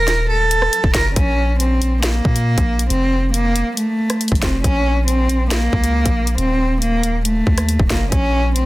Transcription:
0.00 0.69 D#1 loud
0.00 0.27 A#4 loud
0.08 snare medium
0.08 closed hi-hat medium
0.30 0.91 A4 medium
0.51 closed hi-hat medium
0.62 cross-stick medium
0.73 closed hi-hat medium
0.84 0.94 D#1 loud
0.84 kick loud
0.94 1.15 F#1 loud
0.94 1.12 A#4 medium
0.94 kick medium
0.94 snare loud
0.94 closed hi-hat medium
1.16 2.21 A#1 loud
1.16 1.57 C#4 medium
1.16 kick loud
1.16 closed hi-hat medium
1.60 2.01 C4 medium
1.60 closed hi-hat medium
1.82 closed hi-hat medium
2.03 2.86 A#3 medium
2.03 snare loud
2.03 closed hi-hat medium
2.25 2.56 A#2 loud
2.25 kick medium
2.36 closed hi-hat medium
2.58 2.89 A#1 loud
2.58 kick loud
2.58 closed hi-hat medium
2.79 closed hi-hat medium
2.90 3.63 F1 loud
2.90 3.31 C4 medium
2.90 closed hi-hat medium
3.34 3.75 A#3 medium
3.34 closed hi-hat medium
3.56 closed hi-hat medium
3.77 4.39 A3 medium
3.77 closed hi-hat medium
4.10 cross-stick medium
4.10 closed hi-hat medium
4.21 closed hi-hat medium
4.28 4.42 A1 loud
4.28 kick medium
4.28 closed hi-hat medium
4.35 closed hi-hat soft
4.42 4.63 F1 loud
4.42 4.60 C4 medium
4.42 kick medium
4.42 snare loud
4.42 closed hi-hat medium
4.64 5.69 A#1 loud
4.64 5.05 C#4 loud
4.64 kick loud
4.64 closed hi-hat medium
5.07 5.48 C4 medium
5.07 closed hi-hat medium
5.29 closed hi-hat medium
5.51 6.34 A#3 loud
5.51 snare loud
5.51 closed hi-hat medium
5.73 6.04 C#2 loud
5.73 kick medium
5.84 closed hi-hat medium
6.06 6.37 A#1 loud
6.06 kick loud
6.06 closed hi-hat medium
6.27 closed hi-hat medium
6.38 7.43 D#1 loud
6.38 6.79 C4 loud
6.38 closed hi-hat medium
6.82 7.23 A#3 medium
6.82 closed hi-hat medium
7.03 closed hi-hat medium
7.25 7.87 A3 medium
7.25 closed hi-hat medium
7.47 7.78 D#2 loud
7.47 kick medium
7.58 cross-stick medium
7.58 closed hi-hat medium
7.69 closed hi-hat medium
7.79 7.90 D#1 loud
7.79 kick loud
7.90 8.11 F#1 loud
7.90 8.08 A#3 medium
7.90 kick medium
7.90 snare loud
7.90 closed hi-hat medium
8.12 8.66 A#1 loud
8.12 8.53 C#4 medium
8.12 kick loud
8.12 closed hi-hat medium
8.56 8.66 C4 medium
8.56 closed hi-hat medium

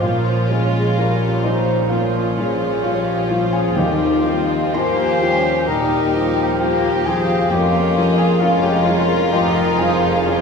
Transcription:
0.00 3.72 A#1 medium
0.00 1.87 A#2 medium
0.00 3.80 A#2 medium
0.00 3.72 A#2 medium
0.00 0.26 F3 soft
0.00 0.48 F3 medium
0.00 1.87 C#4 medium
0.00 1.45 F4 medium
0.00 1.87 F4 medium
0.00 1.46 F4 medium
0.00 1.44 C#5 medium
0.00 0.73 F5 medium
0.00 1.39 F5 medium
0.05 0.51 A#4 medium
0.27 2.14 F3 soft
0.49 0.93 F3 soft
0.49 0.96 G#3 medium
0.49 3.80 C#4 soft
0.49 0.93 F4 soft
0.49 0.98 G#4 medium
0.75 1.21 F5 medium
0.97 1.91 G3 medium
0.97 1.40 C#4 soft
0.97 1.40 F4 soft
0.97 1.44 A#4 medium
0.97 3.81 A#5 medium
1.23 2.60 F5 medium
1.43 1.87 F3 medium
1.43 1.92 D#4 medium
1.43 1.87 F4 medium
1.43 3.28 F4 medium
1.43 1.91 C5 medium
1.43 1.87 D#5 medium
1.70 2.37 C#5 soft
1.89 2.36 F3 medium
1.89 2.65 A#3 medium
1.89 5.83 A#3 medium
1.89 3.73 C#4 medium
1.89 4.70 F4 medium
1.89 3.37 F4 medium
1.89 2.38 A#4 medium
1.89 3.32 C#5 medium
1.89 3.47 F5 medium
2.15 6.05 F3 medium
2.37 5.63 F3 medium
2.37 2.79 F3 soft
2.37 2.80 F4 medium
2.37 2.84 G#4 medium
2.37 3.52 C#5 soft
2.61 3.06 F5 medium
2.82 3.26 C#4 soft
2.82 3.26 F4 soft
2.82 3.29 G4 medium
2.82 3.80 C#6 medium
3.07 4.48 F5 medium
3.29 3.72 F3 soft
3.29 7.19 F4 medium
3.29 3.62 F4 medium
3.29 3.73 F4 medium
3.53 3.78 G#4 medium
3.53 3.80 C#5 soft
3.53 3.77 F5 medium
3.53 3.74 G#5 medium
3.75 7.47 D#2 medium
3.75 5.63 D#2 medium
3.75 7.48 D#2 medium
3.75 5.17 D#3 medium
3.75 7.55 D#3 medium
3.75 4.75 C4 medium
3.75 4.24 D#4 medium
3.75 4.46 G4 medium
3.75 4.73 D#5 medium
3.75 4.70 G5 medium
4.24 4.71 G3 soft
4.24 4.71 F4 soft
4.24 4.74 G4 medium
4.24 5.43 A#4 medium
4.49 4.96 F5 medium
4.73 5.17 A#3 soft
4.73 5.22 A#3 medium
4.73 5.67 F4 medium
4.73 5.17 F4 medium
4.73 5.66 G4 medium
4.73 5.70 C5 loud
4.73 5.68 G#5 medium
4.73 6.58 A#5 medium
4.73 5.63 C6 medium
4.98 6.35 F5 medium
5.22 5.64 G3 medium
5.22 5.68 C#4 medium
5.22 5.64 F4 medium
5.44 6.13 A#4 medium
5.65 6.42 A#2 medium
5.65 6.14 G3 medium
5.65 7.55 D#4 medium
5.65 6.61 D#4 medium
5.65 6.59 G4 medium
5.65 6.58 G4 medium
5.65 7.08 A#4 medium
5.65 7.07 G5 medium
5.65 7.02 A#5 medium
6.12 7.48 F3 medium
6.12 6.57 G3 soft
6.12 6.57 F4 medium
6.12 7.28 A#4 medium
6.36 6.82 F5 medium
6.60 7.06 A#3 medium
6.60 7.03 A#3 soft
6.60 7.49 F4 medium
6.60 7.03 F4 soft
6.60 7.49 G4 medium
6.60 7.54 A#5 medium
6.83 8.17 F5 medium
7.06 7.48 F3 soft
7.06 7.52 C4 medium
7.06 7.48 F4 medium
7.06 7.51 G#4 medium
7.06 7.51 F5 medium
7.06 7.48 G#5 medium
7.29 7.55 A#4 medium
7.50 10.41 F1 medium
7.50 10.41 F2 medium
7.50 9.31 F2 medium
7.50 9.30 F2 medium
7.50 8.39 A#3 medium
7.50 8.40 C#4 medium
7.50 10.41 F4 medium
7.50 8.18 G4 loud
7.50 10.26 A#4 medium
7.50 8.14 G5 medium
7.74 9.56 F3 medium
7.97 8.38 F3 soft
7.97 8.38 F4 medium
7.97 10.41 G#4 medium
8.17 8.42 G#4 medium
8.17 8.64 F5 medium
8.17 8.41 F5 medium
8.17 8.39 G#5 medium
8.40 9.33 G#3 medium
8.40 8.83 C#4 medium
8.40 9.31 C#4 medium
8.40 8.64 F4 medium
8.40 8.83 F4 medium
8.40 8.64 C#5 medium
8.40 8.62 F5 loud
8.40 10.25 C#6 medium
8.63 8.88 G4 medium
8.63 8.86 D#5 medium
8.63 10.02 F5 medium
8.63 8.85 G5 medium
8.86 9.30 F3 medium
8.86 9.34 F4 medium
8.86 10.41 F4 medium
8.86 9.30 F4 medium
8.86 9.33 C#5 medium
8.86 9.29 F5 medium
9.32 10.41 F2 medium
9.32 10.41 F3 medium
9.32 10.24 D#4 medium
9.32 9.57 G4 medium
9.32 9.56 D#5 medium
9.32 9.54 G5 medium
9.55 10.41 F3 medium
9.55 9.81 A#4 medium
9.55 9.79 G5 medium
9.55 9.78 A#5 medium
9.78 10.22 F3 medium
9.78 10.22 F4 medium
9.78 10.41 G#4 medium
9.78 10.41 F5 medium
9.78 10.41 G#5 medium
10.03 10.41 F5 medium
10.24 10.41 C#4 medium
10.24 10.41 F4 medium
10.24 10.41 G#4 medium
10.24 10.41 C#6 medium

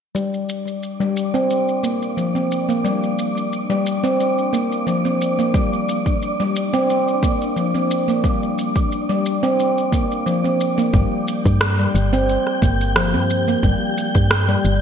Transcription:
0.15 0.81 G3 medium
0.15 10.95 D4 medium
0.15 10.95 D5 medium
0.15 shaker soft
0.34 shaker soft
0.49 shaker medium
0.67 shaker soft
0.83 shaker soft
1.00 1.15 G3 medium
1.00 shaker soft
1.17 shaker medium
1.34 1.49 C4 medium
1.34 shaker soft
1.50 shaker soft
1.69 shaker soft
1.83 2.01 A#3 medium
1.83 shaker medium
2.02 shaker soft
2.17 2.34 F3 medium
2.17 shaker soft
2.35 2.67 C4 medium
2.35 shaker soft
2.52 shaker medium
2.69 2.83 A#3 medium
2.69 shaker soft
2.84 3.50 G3 medium
2.84 shaker soft
3.03 shaker soft
3.19 shaker medium
3.37 shaker soft
3.53 shaker soft
3.70 3.85 G3 medium
3.70 shaker soft
3.86 shaker medium
4.04 4.19 C4 medium
4.04 shaker soft
4.20 shaker soft
4.38 shaker soft
4.53 4.70 A#3 medium
4.53 shaker medium
4.72 shaker soft
4.87 5.04 F3 medium
4.87 shaker soft
5.05 5.37 C4 medium
5.05 shaker soft
5.21 shaker medium
5.39 5.53 A#3 medium
5.39 shaker soft
5.54 6.20 G3 medium
5.54 kick loud
5.54 shaker soft
5.73 shaker soft
5.89 shaker medium
6.06 kick loud
6.06 shaker soft
6.22 shaker soft
6.40 6.55 G3 medium
6.40 shaker soft
6.56 shaker medium
6.74 6.88 C4 loud
6.74 shaker soft
6.90 shaker soft
7.08 shaker soft
7.23 7.40 A#3 medium
7.23 kick loud
7.23 shaker medium
7.42 shaker soft
7.56 7.74 F3 medium
7.56 shaker soft
7.74 8.06 C4 medium
7.74 shaker soft
7.91 shaker medium
8.08 8.22 A#3 medium
8.08 shaker soft
8.24 8.90 G3 medium
8.24 kick loud
8.24 shaker soft
8.43 shaker soft
8.58 shaker medium
8.76 kick loud
8.76 shaker soft
8.92 shaker soft
9.09 9.24 G3 medium
9.09 shaker soft
9.26 shaker medium
9.43 9.58 C4 medium
9.43 shaker soft
9.60 shaker soft
9.78 shaker soft
9.92 10.10 A#3 medium
9.92 kick loud
9.92 shaker medium
10.12 shaker soft
10.26 10.43 F3 medium
10.26 shaker soft
10.44 10.76 C4 medium
10.44 shaker soft
10.61 shaker medium
10.78 10.92 A#3 medium
10.78 shaker soft
10.93 11.06 G1 medium
10.93 11.59 G3 medium
10.93 14.82 G4 medium
10.93 14.82 G5 medium
10.93 kick loud
10.93 shaker soft
11.28 shaker medium
11.45 11.87 G2 medium
11.45 kick medium
11.45 shaker soft
11.61 cross-stick loud
11.61 shaker soft
11.79 11.94 G3 medium
11.95 12.38 G1 medium
11.95 shaker medium
12.13 12.28 C4 medium
12.13 shaker soft
12.29 shaker soft
12.47 cross-stick soft
12.62 13.16 G1 medium
12.62 12.79 A#3 medium
12.62 kick loud
12.62 shaker medium
12.81 shaker soft
12.96 13.13 F3 medium
12.96 cross-stick medium
12.96 shaker soft
13.14 13.56 G2 medium
13.14 13.46 C4 medium
13.30 shaker medium
13.48 13.62 A#3 medium
13.48 shaker soft
13.63 13.76 G1 medium
13.63 14.29 G3 medium
13.63 kick loud
13.63 shaker soft
13.97 shaker medium
14.15 14.57 G2 medium
14.15 kick loud
14.15 shaker soft
14.31 cross-stick loud
14.31 shaker soft
14.49 14.64 G3 medium
14.65 14.82 G1 medium
14.65 shaker medium

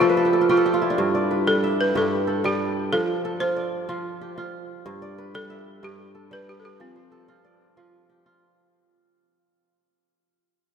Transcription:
0.00 1.03 F3 medium
0.00 0.41 F4 medium
0.00 0.46 F4 medium
0.00 0.17 A4 medium
0.00 0.15 C5 medium
0.00 0.87 D5 medium
0.00 0.60 F5 medium
0.09 1.30 B4 medium
0.17 0.33 A4 medium
0.25 0.49 G4 medium
0.33 0.57 A4 medium
0.41 0.49 F4 medium
0.49 0.73 F4 medium
0.49 0.84 F4 medium
0.49 0.65 G4 medium
0.57 1.89 A4 medium
0.66 1.95 G4 medium
0.74 1.70 F4 medium
0.82 2.38 E4 medium
0.90 2.58 D4 medium
0.98 1.94 G2 medium
1.15 2.25 D5 medium
1.31 2.54 B4 medium
1.47 2.43 G3 medium
1.47 1.80 A4 medium
1.64 2.67 E5 medium
1.81 1.96 B4 medium
1.95 2.97 G2 medium
1.95 3.37 G4 medium
1.95 2.41 A4 medium
2.27 3.24 A4 medium
2.44 2.97 G3 medium
2.44 2.90 G4 medium
2.92 3.88 F3 medium
2.92 3.42 A4 loud
3.25 4.56 A4 medium
3.40 3.88 F4 medium
3.40 4.33 C5 medium
3.56 4.67 D5 medium
3.89 4.91 F3 medium
3.89 4.37 F4 medium
4.21 5.63 G4 medium
4.38 5.56 F4 medium
4.86 5.82 G2 medium
5.02 6.13 D5 medium
5.18 6.41 B4 medium
5.34 6.30 G3 medium
5.34 5.85 A4 loud
5.50 6.53 E5 medium
5.83 6.85 G2 medium
5.83 6.29 G4 medium
6.15 7.11 A4 medium
6.31 6.85 G3 medium
6.31 6.47 B4 loud
6.49 6.61 G4 medium
6.60 6.64 A4 medium
6.65 6.79 G4 medium
6.80 7.76 F3 medium
6.80 8.38 C4 medium
6.96 8.14 C5 medium
7.12 8.43 A4 medium
7.28 7.77 F4 medium
7.44 8.55 D5 medium
7.77 8.79 F3 medium
7.77 8.25 F4 medium
8.10 9.51 G4 medium
8.26 9.77 F4 medium

